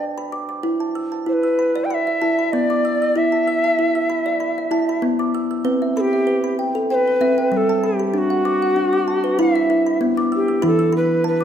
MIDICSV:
0, 0, Header, 1, 3, 480
1, 0, Start_track
1, 0, Key_signature, 1, "minor"
1, 0, Tempo, 623701
1, 502, Time_signature, 4, 2, 24, 8
1, 8805, End_track
2, 0, Start_track
2, 0, Title_t, "Kalimba"
2, 0, Program_c, 0, 108
2, 0, Note_on_c, 0, 81, 50
2, 135, Note_on_c, 0, 83, 58
2, 250, Note_on_c, 0, 86, 52
2, 256, Note_off_c, 0, 81, 0
2, 367, Note_off_c, 0, 86, 0
2, 376, Note_on_c, 0, 86, 49
2, 383, Note_off_c, 0, 83, 0
2, 487, Note_on_c, 0, 64, 66
2, 618, Note_on_c, 0, 81, 47
2, 624, Note_off_c, 0, 86, 0
2, 734, Note_on_c, 0, 88, 52
2, 735, Note_off_c, 0, 64, 0
2, 851, Note_off_c, 0, 81, 0
2, 861, Note_on_c, 0, 81, 45
2, 973, Note_on_c, 0, 64, 62
2, 1094, Note_off_c, 0, 88, 0
2, 1104, Note_on_c, 0, 88, 49
2, 1218, Note_off_c, 0, 81, 0
2, 1219, Note_off_c, 0, 64, 0
2, 1222, Note_on_c, 0, 83, 55
2, 1351, Note_on_c, 0, 74, 61
2, 1456, Note_off_c, 0, 83, 0
2, 1460, Note_off_c, 0, 88, 0
2, 1466, Note_on_c, 0, 83, 55
2, 1593, Note_off_c, 0, 74, 0
2, 1594, Note_on_c, 0, 76, 52
2, 1705, Note_on_c, 0, 64, 59
2, 1705, Note_on_c, 0, 81, 63
2, 1806, Note_off_c, 0, 64, 0
2, 1828, Note_off_c, 0, 83, 0
2, 1837, Note_on_c, 0, 83, 49
2, 1946, Note_off_c, 0, 76, 0
2, 1946, Note_off_c, 0, 81, 0
2, 1948, Note_on_c, 0, 59, 74
2, 2079, Note_on_c, 0, 86, 58
2, 2187, Note_off_c, 0, 83, 0
2, 2192, Note_on_c, 0, 88, 54
2, 2314, Note_off_c, 0, 88, 0
2, 2317, Note_off_c, 0, 86, 0
2, 2322, Note_off_c, 0, 59, 0
2, 2323, Note_on_c, 0, 88, 50
2, 2429, Note_on_c, 0, 64, 70
2, 2557, Note_on_c, 0, 81, 52
2, 2665, Note_off_c, 0, 88, 0
2, 2674, Note_on_c, 0, 88, 55
2, 2793, Note_off_c, 0, 81, 0
2, 2802, Note_on_c, 0, 81, 48
2, 2906, Note_off_c, 0, 64, 0
2, 2915, Note_on_c, 0, 64, 62
2, 3032, Note_off_c, 0, 88, 0
2, 3042, Note_on_c, 0, 88, 53
2, 3151, Note_off_c, 0, 64, 0
2, 3151, Note_off_c, 0, 81, 0
2, 3152, Note_on_c, 0, 83, 55
2, 3277, Note_on_c, 0, 74, 60
2, 3379, Note_off_c, 0, 83, 0
2, 3388, Note_on_c, 0, 83, 57
2, 3390, Note_off_c, 0, 88, 0
2, 3517, Note_off_c, 0, 74, 0
2, 3525, Note_on_c, 0, 76, 51
2, 3624, Note_on_c, 0, 64, 66
2, 3628, Note_on_c, 0, 81, 68
2, 3726, Note_off_c, 0, 64, 0
2, 3755, Note_off_c, 0, 83, 0
2, 3764, Note_on_c, 0, 83, 55
2, 3865, Note_on_c, 0, 59, 75
2, 3868, Note_off_c, 0, 81, 0
2, 3872, Note_off_c, 0, 76, 0
2, 3997, Note_on_c, 0, 86, 60
2, 4112, Note_off_c, 0, 83, 0
2, 4114, Note_on_c, 0, 88, 55
2, 4229, Note_off_c, 0, 88, 0
2, 4237, Note_off_c, 0, 86, 0
2, 4238, Note_on_c, 0, 88, 52
2, 4240, Note_off_c, 0, 59, 0
2, 4345, Note_on_c, 0, 60, 80
2, 4346, Note_on_c, 0, 71, 72
2, 4478, Note_off_c, 0, 88, 0
2, 4479, Note_on_c, 0, 76, 52
2, 4587, Note_off_c, 0, 71, 0
2, 4594, Note_on_c, 0, 83, 59
2, 4708, Note_off_c, 0, 76, 0
2, 4718, Note_on_c, 0, 76, 51
2, 4825, Note_on_c, 0, 71, 65
2, 4946, Note_off_c, 0, 83, 0
2, 4955, Note_on_c, 0, 83, 55
2, 5066, Note_off_c, 0, 71, 0
2, 5068, Note_off_c, 0, 76, 0
2, 5071, Note_on_c, 0, 79, 58
2, 5093, Note_off_c, 0, 60, 0
2, 5195, Note_on_c, 0, 69, 70
2, 5304, Note_off_c, 0, 79, 0
2, 5307, Note_off_c, 0, 83, 0
2, 5313, Note_on_c, 0, 79, 60
2, 5436, Note_off_c, 0, 69, 0
2, 5445, Note_on_c, 0, 71, 57
2, 5547, Note_on_c, 0, 60, 70
2, 5551, Note_on_c, 0, 76, 69
2, 5647, Note_off_c, 0, 60, 0
2, 5670, Note_off_c, 0, 79, 0
2, 5679, Note_on_c, 0, 79, 57
2, 5785, Note_on_c, 0, 55, 75
2, 5789, Note_off_c, 0, 76, 0
2, 5792, Note_off_c, 0, 71, 0
2, 5921, Note_on_c, 0, 81, 63
2, 6028, Note_off_c, 0, 79, 0
2, 6030, Note_on_c, 0, 83, 56
2, 6144, Note_off_c, 0, 83, 0
2, 6153, Note_on_c, 0, 83, 53
2, 6158, Note_off_c, 0, 81, 0
2, 6159, Note_off_c, 0, 55, 0
2, 6261, Note_on_c, 0, 62, 70
2, 6390, Note_on_c, 0, 78, 55
2, 6394, Note_off_c, 0, 83, 0
2, 6503, Note_off_c, 0, 62, 0
2, 6505, Note_on_c, 0, 86, 62
2, 6628, Note_off_c, 0, 78, 0
2, 6637, Note_on_c, 0, 78, 52
2, 6743, Note_on_c, 0, 62, 67
2, 6863, Note_off_c, 0, 86, 0
2, 6872, Note_on_c, 0, 86, 56
2, 6983, Note_off_c, 0, 62, 0
2, 6986, Note_off_c, 0, 78, 0
2, 6986, Note_on_c, 0, 81, 59
2, 7110, Note_on_c, 0, 71, 70
2, 7222, Note_off_c, 0, 71, 0
2, 7223, Note_off_c, 0, 86, 0
2, 7225, Note_on_c, 0, 64, 98
2, 7227, Note_on_c, 0, 83, 60
2, 7353, Note_off_c, 0, 81, 0
2, 7354, Note_on_c, 0, 76, 59
2, 7411, Note_off_c, 0, 64, 0
2, 7465, Note_on_c, 0, 64, 72
2, 7564, Note_off_c, 0, 64, 0
2, 7583, Note_off_c, 0, 83, 0
2, 7592, Note_on_c, 0, 83, 57
2, 7702, Note_on_c, 0, 59, 76
2, 7703, Note_off_c, 0, 76, 0
2, 7830, Note_on_c, 0, 86, 66
2, 7941, Note_off_c, 0, 83, 0
2, 7942, Note_on_c, 0, 88, 58
2, 8059, Note_off_c, 0, 88, 0
2, 8068, Note_on_c, 0, 88, 57
2, 8069, Note_off_c, 0, 86, 0
2, 8074, Note_off_c, 0, 59, 0
2, 8175, Note_on_c, 0, 64, 83
2, 8175, Note_on_c, 0, 83, 69
2, 8183, Note_on_c, 0, 52, 87
2, 8294, Note_off_c, 0, 88, 0
2, 8304, Note_on_c, 0, 88, 60
2, 8399, Note_off_c, 0, 83, 0
2, 8408, Note_on_c, 0, 83, 67
2, 8417, Note_off_c, 0, 64, 0
2, 8652, Note_on_c, 0, 81, 73
2, 8655, Note_off_c, 0, 88, 0
2, 8778, Note_on_c, 0, 86, 58
2, 8781, Note_off_c, 0, 83, 0
2, 8805, Note_off_c, 0, 52, 0
2, 8805, Note_off_c, 0, 81, 0
2, 8805, Note_off_c, 0, 86, 0
2, 8805, End_track
3, 0, Start_track
3, 0, Title_t, "Native American-style wooden flute"
3, 0, Program_c, 1, 77
3, 990, Note_on_c, 1, 72, 65
3, 1022, Note_on_c, 1, 71, 71
3, 1030, Note_off_c, 1, 72, 0
3, 1422, Note_on_c, 1, 79, 60
3, 1434, Note_off_c, 1, 71, 0
3, 1468, Note_on_c, 1, 78, 79
3, 1480, Note_off_c, 1, 79, 0
3, 1494, Note_on_c, 1, 76, 86
3, 1502, Note_off_c, 1, 78, 0
3, 1944, Note_on_c, 1, 74, 78
3, 1956, Note_off_c, 1, 76, 0
3, 2441, Note_on_c, 1, 76, 76
3, 2453, Note_off_c, 1, 74, 0
3, 3875, Note_off_c, 1, 76, 0
3, 4590, Note_on_c, 1, 69, 83
3, 4621, Note_on_c, 1, 67, 90
3, 4629, Note_off_c, 1, 69, 0
3, 5038, Note_off_c, 1, 67, 0
3, 5318, Note_on_c, 1, 72, 84
3, 5347, Note_on_c, 1, 71, 91
3, 5354, Note_off_c, 1, 72, 0
3, 5800, Note_off_c, 1, 71, 0
3, 5800, Note_on_c, 1, 71, 77
3, 5825, Note_on_c, 1, 69, 83
3, 5833, Note_off_c, 1, 71, 0
3, 6050, Note_on_c, 1, 67, 73
3, 6061, Note_off_c, 1, 69, 0
3, 6216, Note_off_c, 1, 67, 0
3, 6216, Note_on_c, 1, 67, 58
3, 6296, Note_on_c, 1, 66, 85
3, 6307, Note_off_c, 1, 67, 0
3, 7238, Note_off_c, 1, 66, 0
3, 7243, Note_on_c, 1, 76, 64
3, 7681, Note_off_c, 1, 76, 0
3, 7971, Note_on_c, 1, 67, 66
3, 8179, Note_off_c, 1, 67, 0
3, 8211, Note_on_c, 1, 69, 85
3, 8419, Note_off_c, 1, 69, 0
3, 8440, Note_on_c, 1, 71, 81
3, 8652, Note_off_c, 1, 71, 0
3, 8677, Note_on_c, 1, 71, 82
3, 8805, Note_off_c, 1, 71, 0
3, 8805, End_track
0, 0, End_of_file